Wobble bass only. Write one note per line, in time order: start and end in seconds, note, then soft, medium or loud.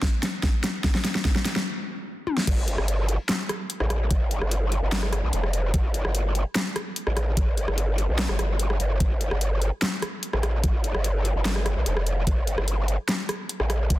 2.47 2.77 G1 loud
2.78 3.17 G1 loud
3.80 4.09 A1 loud
4.11 4.40 G1 loud
4.42 4.81 G1 loud
4.82 5.21 G1 medium
5.23 5.31 A#1 loud
5.33 5.72 F1 loud
5.74 6.03 G1 loud
6.05 6.44 G1 loud
7.07 7.36 A1 loud
7.37 7.66 G1 medium
7.68 8.07 G1 loud
8.09 8.28 A#1 loud
8.29 8.38 G1 loud
8.39 8.78 G1 loud
8.80 8.99 G1 medium
9.00 9.30 G1 loud
9.31 9.70 G1 loud
10.33 10.62 A1 loud
10.64 10.93 G1 loud
10.95 11.34 G1 loud
11.35 11.75 G1 loud
11.76 11.85 A#1 medium
11.86 12.25 F1 loud
12.27 12.56 G1 loud
12.58 12.97 G1 loud
13.60 13.89 A1 loud
13.90 13.99 G1 loud